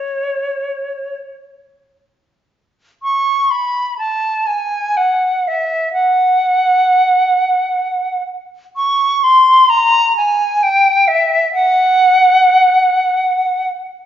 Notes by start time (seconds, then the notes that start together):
Already playing: C#5
3.02 C#6
3.51 B5
3.98 A5
4.46 G#5
4.97 F#5
5.47 E5
5.93 F#5
8.76 C#6
9.23 C6
9.69 A#5
10.17 G#5
10.63 G5
11.07 E5
11.53 F#5